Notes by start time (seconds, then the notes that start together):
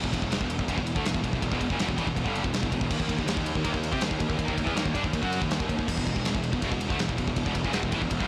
0.04 E1 E2 B2, kick
0.12 E1 E2 B2, kick, ride
0.22 E1 E2 B2, kick
0.30 E1 E2 B2, snare, ride
0.40 E1 E2 B2, kick
0.50 ride
0.59 E1 E2 B2, kick
0.68 E1 E2 B2, kick, ride
0.77 E1 E2 B2, kick
0.87 ride
0.96 D2 D3 A3, kick
1.05 E1 E2 B2, snare, ride
1.14 E1 E2 B2, kick
1.23 E1 E2 B2, kick, ride
1.33 E1 E2 B2, kick
1.42 E1 E2 B2, kick, ride
1.51 E1 E2 B2, kick
1.61 E1 E2 B2, kick, ride
1.70 F#1 F#2 C#3, kick
1.79 E1 E2 B2, snare, ride
1.88 E1 E2 B2, kick
1.98 A1 A2 E3, kick, ride
2.07 E1 E2 B2, kick
2.16 E1 E2 B2, kick, ride
2.25 G1 G2 D3 G3, kick
2.35 ride
2.44 E1 E2 B2, kick
2.54 snare, ride
2.63 E1 E2 B2, kick
2.72 E1 E2 B2, kick, ride
2.81 E1 E2 B2, kick
2.90 D#2 D#3 A#3, kick, crash
2.98 D#2 D#3 A#3, kick
3.02 D#3 A#3
3.08 D#2 D#3 A#3, kick, ride
3.12 A#3
3.17 D#2 D#3 A#3, kick
3.21 A#3
3.26 D#2 D#3, snare, ride
3.30 A#3
3.37 D#2 D#3 A#3, kick
3.46 ride
3.55 D#2 D#3 A#3, kick
3.64 D#2 D#3 A#3, kick, ride
3.74 D#2 D#3 A#3, kick
3.83 ride
3.93 C3 C4 G4, kick
4.01 D#2 D#3 A#3, snare, ride
4.10 D#2 D#3 A#3, kick
4.19 D#2 D#3 A#3, kick, ride
4.29 D#2 D#3 A#3, kick
4.38 D#2 D#3 A#3, kick, ride
4.48 D#2 D#3 A#3, kick
4.58 D#2 D#3 A#3, kick, ride
4.66 E2 E3 B3, kick
4.76 D#2 D#3 A#3, snare, ride
4.85 D#2 D#3 A#3, kick
4.95 G2 G3 D4, kick, ride
5.04 D#2 D#3 A#3, kick
5.13 D#2 D#3 A#3, kick, ride
5.23 F#2 F#3 C#4 F#4, kick
5.32 ride
5.41 D#2 D#3 A#3, kick
5.51 snare, ride
5.60 D#2 D#3 A#3, kick
5.69 D#2 D#3 A#3, kick, ride
5.79 D#2 D#3 A#3, kick
5.88 E1 E2 B2, kick, crash
5.98 E1 E2 B2, kick
6.07 E1 E2 B2, kick, ride
6.16 E1 E2 B2, kick
6.25 E1 E2 B2, snare, ride
6.34 E1 E2 B2, kick
6.43 ride
6.52 E1 E2 B2, kick
6.62 E1 E2 B2, kick, ride
6.70 E1 E2 B2, kick
6.81 ride
6.88 D2 D3 A3, kick
6.98 E1 E2 B2, snare, ride
7.08 E1 E2 B2, kick
7.17 E1 E2 B2, kick, ride
7.27 E1 E2 B2, kick
7.36 E1 E2 B2, kick, ride
7.46 E1 E2 B2, kick
7.55 E1 E2 B2, kick, ride
7.63 F#1 F#2 C#3, kick
7.71 E1 E2 B2, snare, ride
7.82 E1 E2 B2, kick
7.92 A1 A2 E3, kick, ride
8.01 E1 E2 B2, kick
8.11 E1 E2 B2, kick, ride
8.19 G1 G2 D3 G3, kick